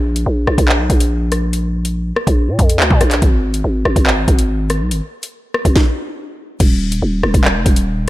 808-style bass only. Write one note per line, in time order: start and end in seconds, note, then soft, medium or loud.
0.00 0.25 A#1 loud
0.26 0.47 A#1 loud
0.47 0.58 A#1 loud
0.58 0.81 A#1 loud
0.79 0.89 B1 loud
0.90 2.12 A#1 loud
2.27 2.50 A#1 loud
2.48 2.58 A#2 loud
2.59 2.81 F2 loud
2.80 2.90 D2 medium
2.90 3.00 A#2 loud
3.01 3.21 A#1 loud
3.22 3.63 G#1 loud
3.64 3.85 G#1 loud
3.85 3.96 G#1 loud
3.96 4.26 G#1 loud
4.28 4.82 G#1 loud
4.81 4.93 B1 loud
4.91 5.01 G#1 loud
5.65 5.75 G#1 loud
6.60 7.01 D#1 loud
7.02 7.23 D#1 loud
7.23 7.34 D#1 loud
7.34 7.57 D#1 loud
7.55 7.65 F1 loud
7.66 8.09 D#1 loud